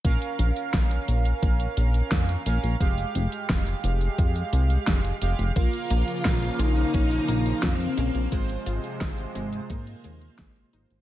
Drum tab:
HH |xxxxxxxxxxxxxxxx|xxxxxxxxxxxxxxxx|xxxxxxxxxxxxxxxx|xxxxxxxxxxxxxxxx|
SD |----o-------o---|----o-------o---|----o-------o---|----o-------o---|
BD |o---o---o---o---|o---o---o---o---|o---o---o---o---|o---o---o---o---|